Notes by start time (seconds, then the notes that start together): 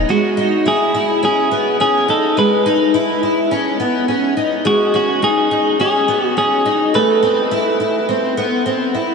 0.09 G#3 F#4
0.37 D#4
0.66 E4 G#4
0.94 E4
1.23 C#4 G#4
1.51 B3
1.80 C#4 G#4
2.08 D#4 A4
2.37 G#3 B4
2.66 D#4
2.94 E4
3.23 E4
3.51 C#4
3.80 B3
4.08 C#4
4.37 D#4
4.65 G#3 F#4
4.94 C#4 F#4
5.22 D#4 G#4
5.51 D#4
5.80 C#4 G#4
6.08 B3
6.26 F#4
6.37 C#4 G#4
6.66 D#4
6.94 A3 B4
7.23 C4
7.51 E4
7.80 E4
8.09 C4
8.37 B3
8.66 C4
8.94 E4